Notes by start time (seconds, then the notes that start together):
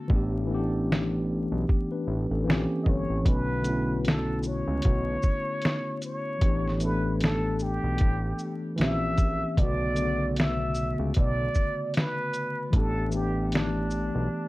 0.08 A1 E3 A3 B3, kick
0.13 D4 G4
0.47 E3 A3 B3
0.53 C#4 G4
0.59 D4
0.92 snare
1.52 B1
1.69 B3 G4, kick
1.92 D4 B4
2.07 A1
2.31 A1 C#4 A4
2.44 A#1 E3 A#3 C4
2.49 C#4 G4, snare
2.83 G1 D#5, kick
2.88 C#5
3.10 A1
3.22 B1 D3 A3 B3, kick, closed hi-hat
3.28 C#4 F#4 B4
3.62 D3 A3 B3, closed hi-hat, shaker
3.67 C#4 E4
4.05 A4, snare, closed hi-hat
4.43 C#5, shaker
4.67 C#2
4.82 B1, kick, closed hi-hat
5.23 kick, shaker
5.62 snare, closed hi-hat
6.02 C#5, closed hi-hat, shaker
6.39 A1 E3 A3 B3, kick, closed hi-hat
6.44 D4 G4
6.68 snare
6.78 E3 A3 B3, closed hi-hat, shaker
6.83 D4 A4 B4
7.21 A4, snare, closed hi-hat
7.59 G4, shaker
7.84 B1
7.98 A1, kick, closed hi-hat
8.39 shaker
8.76 A#1 E3 A#3 C4, closed hi-hat
8.81 C#4 G4 E5, snare
9.18 kick, closed hi-hat, shaker
9.55 B1 D3 A3 B3 D5, kick, closed hi-hat
9.61 C#3 F#4
9.95 D3 A3 B3, closed hi-hat, shaker
10.00 C#3 F#4
10.36 E5, snare, closed hi-hat
10.75 shaker
10.99 C#2
11.14 B1 D5, kick, closed hi-hat
11.55 kick, shaker
11.94 B4, snare, closed hi-hat
12.34 closed hi-hat, shaker
12.69 E3 A3 B4, kick
12.73 A1 B3 D4 A4, closed hi-hat
12.78 G4
13.09 E3 A3 B3, shaker
13.14 D4 G4
13.52 D4, snare, closed hi-hat
13.91 shaker
14.15 B1